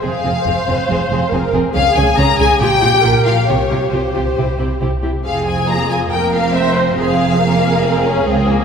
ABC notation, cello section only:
X:1
M:4/4
L:1/8
Q:1/4=139
K:Fm
V:1 name="Cello section" clef=bass
F,, F,, F,, F,, F,, F,, F,, F,, | D, D, D, D, B,, B,, B,, B,, | C, C, C, C, C, C, C, C, | F,,4 F,,4 |
F,,6 D,,2 |]